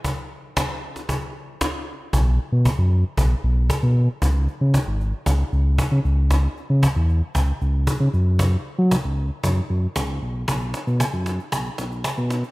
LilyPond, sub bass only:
\new Staff \with { instrumentName = "Sub bass" } { \clef bass \time 4/4 \key b \dorian \tempo 4 = 115 r1 | b,,8. b,8 fis,8. b,,8 b,,8. b,8. | cis,8. cis8 gis,,8. cis,8 cis,8. cis16 cis,8~ | cis,8. cis8 e,8. cis,8 cis,8. cis16 fis,8~ |
fis,8. fis8 cis,8. fis,8 fis,8 cis,8 b,,8 | b,,8. b,8 fis,8. b,,8 b,,8. b,8. | }